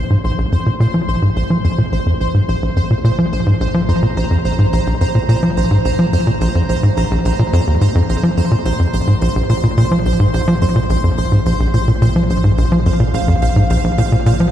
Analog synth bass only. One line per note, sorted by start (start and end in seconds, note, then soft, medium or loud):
0.10 0.17 G#2 medium
0.24 0.31 A#1 loud
0.38 0.45 A#1 loud
0.52 0.56 F2 medium
0.66 0.70 A#2 medium
0.80 0.87 A#2 loud
0.94 1.01 F3 medium
1.08 1.15 A#1 medium
1.22 1.29 G#2 medium
1.36 1.43 A#1 loud
1.50 1.57 F3 medium
1.64 1.69 F2 medium
1.78 1.82 A#2 medium
1.92 1.99 A#1 medium
2.06 2.13 F2 medium
2.20 2.27 A#1 medium
2.34 2.41 G#2 medium
2.48 2.55 A#1 loud
2.62 2.69 A#1 loud
2.76 2.81 F2 medium
2.90 2.95 A#2 medium
3.04 3.12 A#2 loud
3.18 3.26 F3 medium
3.32 3.40 A#1 medium
3.46 3.54 G#2 medium
3.60 3.68 A#1 medium
3.74 3.82 F3 medium
3.88 3.93 F2 medium
4.03 4.07 A#2 medium
4.17 4.24 A#1 medium
4.31 4.38 F2 medium
4.45 4.52 A#1 medium
4.59 4.66 G#2 medium
4.73 4.80 A#1 loud
4.87 4.94 A#1 loud
5.01 5.05 F2 medium
5.15 5.19 A#2 medium
5.29 5.36 A#2 loud
5.43 5.50 F3 medium
5.57 5.64 A#1 medium
5.71 5.78 G#2 medium
5.85 5.92 A#1 medium
5.99 6.06 F3 medium
6.13 6.17 F2 medium
6.27 6.31 A#2 medium
6.41 6.48 A#1 loud
6.55 6.62 F2 medium
6.69 6.76 A#1 medium
6.83 6.90 G#2 medium
6.97 7.04 A#1 medium
7.11 7.18 A#1 loud
7.25 7.32 A#1 medium
7.39 7.43 A#2 medium
7.53 7.60 F2 medium
7.67 7.78 D#2 medium
7.81 7.88 G#2 medium
7.95 8.02 F2 loud
8.09 8.16 A#1 medium
8.23 8.30 F3 medium
8.37 8.41 F2 medium
8.51 8.56 A#2 medium
8.65 8.72 A#1 loud
8.79 8.86 F2 medium
8.93 9.00 A#1 medium
9.07 9.14 G#2 medium
9.22 9.29 A#1 loud
9.35 9.42 A#1 loud
9.50 9.54 A#2 medium
9.63 9.68 A#2 medium
9.78 9.85 A#2 medium
9.91 9.99 F3 medium
10.05 10.13 A#1 medium
10.20 10.27 G#2 medium
10.34 10.41 A#1 medium
10.48 10.55 F3 medium
10.62 10.66 F2 medium
10.76 10.80 A#2 medium
10.90 10.97 A#1 loud
11.04 11.11 F2 medium
11.18 11.25 A#1 medium
11.32 11.39 G#2 medium
11.46 11.53 A#1 loud
11.60 11.67 A#1 medium
11.74 11.78 A#2 medium
11.88 11.92 A#2 medium
12.02 12.09 A#2 medium
12.16 12.23 F3 medium
12.30 12.37 A#1 medium
12.44 12.51 G#2 medium
12.58 12.65 A#1 loud
12.72 12.79 F3 medium
12.86 12.90 F2 medium
13.00 13.04 A#2 medium
13.14 13.21 A#1 loud
13.28 13.35 F2 medium
13.42 13.49 A#1 medium
13.56 13.63 G#2 medium
13.70 13.77 A#1 loud
13.84 13.91 A#1 loud
13.98 14.02 A#2 medium
14.12 14.16 A#2 medium
14.26 14.33 A#2 loud
14.40 14.47 F3 medium